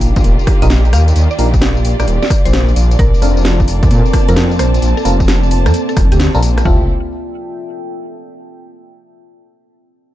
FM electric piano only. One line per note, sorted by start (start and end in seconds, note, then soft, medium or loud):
0.00 0.59 D4 medium
0.00 0.59 D#4 medium
0.00 0.59 F4 medium
0.00 0.59 G4 medium
0.00 0.59 A#4 medium
0.62 0.68 D4 medium
0.62 0.68 D#4 medium
0.62 0.67 F4 medium
0.62 0.68 G4 medium
0.62 0.67 A#4 loud
1.39 1.49 D4 medium
1.39 1.49 D#4 medium
1.39 1.49 F4 medium
1.39 1.49 G4 medium
1.39 1.49 A#4 loud
3.22 4.25 C4 medium
3.22 4.25 D4 medium
3.22 4.25 F4 medium
3.22 4.25 A4 medium
3.22 4.25 A#4 medium
4.29 4.34 C4 medium
4.29 4.34 D4 medium
4.29 4.34 F4 medium
4.29 4.34 A4 medium
4.29 4.34 A#4 loud
5.05 5.15 C4 medium
5.05 5.15 D4 medium
5.05 5.15 F4 medium
5.05 5.15 A4 medium
5.05 5.15 A#4 loud
6.35 6.40 C4 loud
6.35 6.40 D4 medium
6.35 6.40 F4 medium
6.35 6.40 A4 medium
6.35 6.40 A#4 loud
6.65 6.84 C4 medium
6.65 6.84 E4 medium
6.65 6.84 F4 medium
6.65 6.84 G4 medium
6.65 6.84 A4 medium